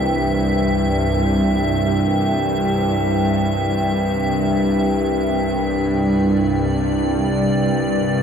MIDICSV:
0, 0, Header, 1, 4, 480
1, 0, Start_track
1, 0, Key_signature, 0, "major"
1, 0, Tempo, 500000
1, 7898, End_track
2, 0, Start_track
2, 0, Title_t, "Ambient pad"
2, 0, Program_c, 0, 92
2, 0, Note_on_c, 0, 76, 71
2, 5286, Note_on_c, 0, 74, 77
2, 5290, Note_off_c, 0, 76, 0
2, 7898, Note_off_c, 0, 74, 0
2, 7898, End_track
3, 0, Start_track
3, 0, Title_t, "Analog synth pad"
3, 0, Program_c, 1, 89
3, 0, Note_on_c, 1, 55, 68
3, 0, Note_on_c, 1, 64, 79
3, 0, Note_on_c, 1, 72, 61
3, 0, Note_on_c, 1, 79, 79
3, 5264, Note_on_c, 1, 48, 73
3, 5271, Note_off_c, 1, 72, 0
3, 6901, Note_on_c, 1, 62, 72
3, 6960, Note_off_c, 1, 64, 0
3, 7898, Note_off_c, 1, 48, 0
3, 7898, Note_off_c, 1, 55, 0
3, 7898, Note_off_c, 1, 62, 0
3, 7898, Note_off_c, 1, 79, 0
3, 7898, End_track
4, 0, Start_track
4, 0, Title_t, "Synth drone"
4, 0, Program_c, 2, 95
4, 0, Note_on_c, 2, 36, 62
4, 0, Note_on_c, 2, 43, 65
4, 7898, Note_off_c, 2, 36, 0
4, 7898, Note_off_c, 2, 43, 0
4, 7898, End_track
0, 0, End_of_file